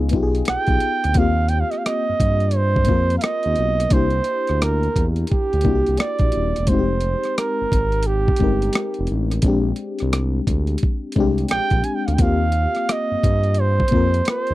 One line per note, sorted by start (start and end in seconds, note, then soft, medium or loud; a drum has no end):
0.00 0.15 C#2 medium
0.00 0.11 B3 medium
0.00 0.13 D#4 medium
0.00 0.14 F4 medium
0.00 0.10 G#4 medium
0.09 1.04 B3 medium
0.09 1.04 D#4 medium
0.09 kick medium
0.09 closed hi-hat medium
0.14 0.42 B1 medium
0.14 1.05 F4 medium
0.14 0.22 G4 medium
0.23 1.09 G#4 medium
0.35 closed hi-hat soft
0.45 cross-stick loud
0.45 closed hi-hat medium
0.49 0.57 B1 soft
0.49 1.20 G5 loud
0.67 0.79 B1 medium
0.67 kick medium
0.67 closed hi-hat soft
0.80 closed hi-hat medium
1.04 1.15 D2 medium
1.04 cross-stick soft
1.04 closed hi-hat soft
1.14 1.63 D#2 loud
1.14 2.36 A#3 medium
1.14 2.36 C4 medium
1.14 kick loud
1.14 closed hi-hat medium
1.18 2.37 F4 medium
1.18 2.38 G4 medium
1.18 1.51 F5 medium
1.49 1.62 G5 medium
1.49 closed hi-hat medium
1.60 1.72 F5 medium
1.71 1.79 D#5 medium
1.71 cross-stick soft
1.71 closed hi-hat soft
1.78 1.87 F5 medium
1.86 2.57 D#5 medium
1.86 cross-stick loud
1.86 closed hi-hat medium
2.09 2.14 G2 soft
2.20 2.91 G2 medium
2.20 kick medium
2.20 closed hi-hat medium
2.40 closed hi-hat soft
2.51 closed hi-hat medium
2.55 3.17 C5 loud
2.76 kick medium
2.85 3.79 A#3 medium
2.85 3.80 C4 medium
2.85 kick medium
2.85 closed hi-hat medium
2.90 3.18 F2 medium
2.90 3.81 F4 medium
2.90 3.82 A#4 medium
3.10 closed hi-hat soft
3.18 3.24 F5 medium
3.18 closed hi-hat medium
3.23 3.94 D#5 loud
3.23 cross-stick loud
3.43 3.56 D#2 medium
3.43 closed hi-hat soft
3.56 3.87 B1 medium
3.56 closed hi-hat medium
3.80 cross-stick soft
3.80 closed hi-hat soft
3.90 4.21 C2 loud
3.90 5.11 A#3 medium
3.90 5.12 D4 medium
3.90 5.13 E4 medium
3.90 4.65 C5 medium
3.90 kick loud
3.90 closed hi-hat medium
3.96 5.14 G4 medium
4.10 closed hi-hat soft
4.24 closed hi-hat medium
4.47 4.89 D2 medium
4.47 cross-stick soft
4.47 closed hi-hat soft
4.62 5.06 A#4 medium
4.62 cross-stick loud
4.62 closed hi-hat medium
4.83 closed hi-hat soft
4.96 5.25 E2 medium
4.96 kick medium
4.96 closed hi-hat medium
5.16 closed hi-hat soft
5.27 6.01 G4 medium
5.27 closed hi-hat medium
5.32 kick medium
5.53 5.63 D2 medium
5.53 closed hi-hat soft
5.61 6.56 A#3 medium
5.61 kick medium
5.61 closed hi-hat medium
5.65 5.83 C2 medium
5.65 6.56 D4 medium
5.65 6.57 E4 medium
5.65 5.74 F#4 medium
5.75 6.61 G4 medium
5.86 5.98 C2 medium
5.86 closed hi-hat soft
5.97 6.70 D5 medium
5.97 cross-stick loud
5.97 closed hi-hat medium
6.19 6.31 A#1 medium
6.19 kick medium
6.19 closed hi-hat soft
6.32 closed hi-hat medium
6.36 6.53 D#1 medium
6.56 6.67 E1 medium
6.56 cross-stick soft
6.56 closed hi-hat medium
6.67 7.15 F1 medium
6.67 7.88 G#3 medium
6.67 7.89 C4 medium
6.67 7.39 C5 medium
6.67 kick medium
6.67 closed hi-hat medium
6.71 7.89 D#4 soft
6.71 6.78 F#4 medium
6.79 7.93 G4 medium
7.01 closed hi-hat medium
7.24 cross-stick soft
7.24 closed hi-hat soft
7.38 8.08 A#4 medium
7.38 cross-stick loud
7.38 closed hi-hat medium
7.61 7.66 G#1 soft
7.72 8.30 G#1 medium
7.72 kick medium
7.72 closed hi-hat medium
7.92 closed hi-hat soft
8.03 closed hi-hat medium
8.07 9.09 G4 medium
8.28 kick medium
8.36 9.31 G#3 medium
8.36 kick medium
8.36 closed hi-hat medium
8.41 8.70 G1 loud
8.41 9.32 C4 medium
8.41 9.33 D#4 medium
8.41 9.33 A#4 medium
8.62 closed hi-hat soft
8.73 cross-stick loud
8.73 closed hi-hat medium
8.94 closed hi-hat soft
8.99 9.08 F1 medium
9.07 closed hi-hat soft
9.11 9.39 A1 medium
9.31 cross-stick soft
9.31 closed hi-hat medium
9.42 9.73 A#1 loud
9.42 10.63 G#3 medium
9.42 10.64 C4 medium
9.42 10.65 D4 medium
9.42 kick loud
9.42 closed hi-hat medium
9.48 10.66 G4 medium
9.76 closed hi-hat medium
9.99 10.41 C2 medium
9.99 cross-stick soft
9.99 closed hi-hat soft
10.13 cross-stick loud
10.13 closed hi-hat medium
10.47 10.77 D2 medium
10.47 kick medium
10.47 closed hi-hat medium
10.67 closed hi-hat soft
10.78 closed hi-hat medium
10.83 kick medium
11.12 12.07 G#3 medium
11.12 kick medium
11.12 closed hi-hat medium
11.17 11.46 C2 medium
11.17 12.08 C4 medium
11.17 12.09 D4 medium
11.17 12.10 G4 loud
11.38 closed hi-hat soft
11.48 11.60 A#1 soft
11.48 11.86 G5 loud
11.48 cross-stick loud
11.48 closed hi-hat medium
11.70 11.83 A#1 medium
11.70 kick medium
11.70 closed hi-hat soft
11.84 11.97 G#5 medium
11.84 closed hi-hat medium
11.95 12.08 G5 medium
12.06 12.18 D2 medium
12.06 12.16 F5 medium
12.06 cross-stick soft
12.06 closed hi-hat medium
12.14 12.23 G5 medium
12.18 12.67 D#2 loud
12.18 13.39 A#3 medium
12.18 13.39 C4 medium
12.18 13.41 F4 medium
12.18 12.94 F5 loud
12.18 kick loud
12.18 closed hi-hat medium
12.23 13.41 G4 medium
12.52 closed hi-hat medium
12.75 cross-stick soft
12.75 closed hi-hat soft
12.89 13.62 D#5 medium
12.89 cross-stick loud
12.89 closed hi-hat medium
13.12 13.16 G2 soft
13.23 13.82 G2 medium
13.23 kick medium
13.23 closed hi-hat medium
13.43 closed hi-hat soft
13.54 closed hi-hat medium
13.61 14.28 C5 loud
13.80 kick medium
13.88 14.54 A#3 medium
13.88 closed hi-hat medium
13.92 14.22 F2 loud
13.92 14.54 C4 medium
13.92 14.54 F4 medium
13.92 14.54 A#4 medium
13.92 kick medium
14.14 closed hi-hat soft
14.25 cross-stick loud
14.25 closed hi-hat medium
14.30 14.54 C5 medium
14.47 14.54 D#2 medium
14.47 closed hi-hat soft